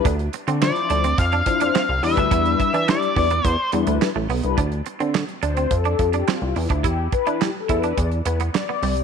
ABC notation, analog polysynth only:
X:1
M:4/4
L:1/16
Q:1/4=106
K:Ddor
V:1 name="Analog polysynth"
z4 [F,DEc]3 z3 [F,DEc]3 z [G,DEB]2- | [G,DEB]3 z [G,DEd]3 z3 [G,DEB]3 z2 [G,DEB] | z6 c2 (3A2 A2 G2 F2 E2 | G2 B2 (3G2 A2 B2 d2 B2 d4 |]